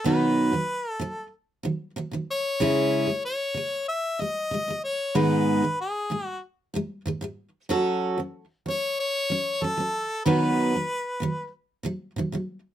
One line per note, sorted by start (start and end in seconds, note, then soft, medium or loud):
0.04 0.51 B2 medium
0.04 0.52 D#3 medium
0.04 0.53 F#3 medium
0.04 0.53 B3 medium
0.04 0.53 D#4 medium
0.04 0.54 B4 medium
0.04 0.91 B4 medium
0.52 0.78 B2 soft
0.52 0.79 D#3 soft
0.52 0.79 F#3 soft
0.91 1.30 A4 medium
0.99 1.26 B2 medium
0.99 1.27 D#3 medium
0.99 1.27 F#3 medium
1.63 1.90 B2 medium
1.63 1.90 D#3 medium
1.63 1.91 F#3 medium
1.96 2.10 B2 medium
1.96 2.12 D#3 medium
1.96 2.13 F#3 medium
2.11 2.38 B2 soft
2.11 2.39 D#3 soft
2.11 2.39 F#3 soft
2.31 3.21 C#5 medium
2.60 3.06 C#3 medium
2.60 3.08 G#3 medium
2.60 3.09 C#4 medium
2.60 3.09 E4 medium
2.60 3.09 G#4 medium
3.07 3.33 C#3 soft
3.07 3.34 G#3 soft
3.25 3.85 C#5 medium
3.54 3.81 C#3 soft
3.54 3.82 G#3 medium
3.89 4.23 E5 medium
4.19 4.45 C#3 soft
4.19 4.46 G#3 medium
4.19 4.84 D#5 medium
4.51 4.67 C#3 medium
4.51 4.69 G#3 medium
4.68 4.94 C#3 soft
4.68 4.95 G#3 medium
4.84 5.18 C#5 medium
5.15 5.61 G#2 medium
5.15 5.63 D#3 medium
5.15 5.63 G#3 medium
5.15 5.64 B3 medium
5.15 5.64 D#4 medium
5.15 5.64 G#4 medium
5.15 5.80 B4 medium
5.62 5.89 G#2 soft
5.62 5.89 D#3 soft
5.62 5.90 G#3 soft
5.81 6.26 G#4 medium
6.10 6.36 G#2 medium
6.10 6.37 D#3 medium
6.10 6.37 G#3 medium
6.26 6.40 F#4 medium
6.74 7.00 G#2 medium
6.74 7.01 D#3 medium
6.74 7.01 G#3 medium
7.06 7.20 G#2 medium
7.06 7.21 D#3 medium
7.06 7.23 G#3 medium
7.21 7.48 G#2 medium
7.21 7.48 D#3 medium
7.21 7.49 G#3 medium
7.69 8.16 F#3 medium
7.69 8.18 C#4 medium
7.69 8.19 F#4 medium
7.69 8.19 A4 medium
8.18 8.44 F#3 soft
8.18 8.45 C#4 soft
8.66 8.92 F#3 soft
8.66 8.93 C#4 medium
8.66 8.98 C#5 medium
9.00 9.65 C#5 loud
9.30 9.56 F#3 medium
9.30 9.57 C#4 medium
9.62 9.76 F#3 medium
9.62 9.79 C#4 medium
9.62 10.25 A4 medium
9.77 10.03 F#3 soft
9.77 10.05 C#4 soft
10.26 10.73 B2 medium
10.26 10.74 D#3 medium
10.26 10.74 F#3 medium
10.26 10.74 B3 medium
10.26 10.74 D#4 medium
10.26 11.49 B4 medium
10.26 10.74 B4 medium
10.74 10.99 B2 soft
10.74 11.00 D#3 soft
10.74 11.01 F#3 soft
11.20 11.46 B2 medium
11.20 11.47 D#3 medium
11.20 11.48 F#3 medium
11.83 12.10 B2 medium
11.83 12.11 D#3 medium
11.83 12.11 F#3 medium
12.16 12.31 B2 medium
12.16 12.32 D#3 medium
12.16 12.34 F#3 medium
12.32 12.58 B2 soft
12.32 12.59 D#3 medium
12.32 12.60 F#3 medium